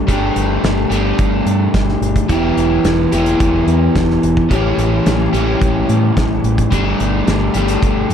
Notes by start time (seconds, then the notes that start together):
0.07 G1 G3 A3 D4 G4, kick, closed hi-hat
0.36 G1, closed hi-hat
0.63 G1, snare, closed hi-hat
0.90 G1 G3 A3 D4 G4, closed hi-hat
1.19 G1, kick, closed hi-hat
1.45 G2, closed hi-hat
1.74 G1, kick, snare, closed hi-hat
1.89 snare
2.01 G1, closed hi-hat
2.16 kick, closed hi-hat
2.29 E1 E3 B3 E4 G4, kick, closed hi-hat
2.57 E1, closed hi-hat
2.84 E1, snare, closed hi-hat
3.12 E1 E3 B3 E4 G4, closed hi-hat
3.26 closed hi-hat
3.40 E1, kick, closed hi-hat
3.66 E2, closed hi-hat
3.95 E1, kick, snare, closed hi-hat
4.10 snare
4.23 E1, closed hi-hat
4.37 kick
4.50 A1 A2 E3 G3 C#4 G4, kick, closed hi-hat
4.77 A1, closed hi-hat
5.06 A1, snare, closed hi-hat
5.33 A1 A2 E3 G3 C#4 G4, closed hi-hat
5.61 A1, kick, closed hi-hat
5.89 A2, closed hi-hat
6.17 A1, kick, snare, closed hi-hat
6.44 A1, closed hi-hat
6.58 kick, closed hi-hat
6.71 G1 G3 A3 D4 G4, kick, closed hi-hat
7.00 G1, closed hi-hat
7.27 G1, snare, closed hi-hat
7.54 G1 G3 A3 D4 G4, closed hi-hat
7.68 closed hi-hat
7.82 G1, kick, closed hi-hat
8.10 G2, closed hi-hat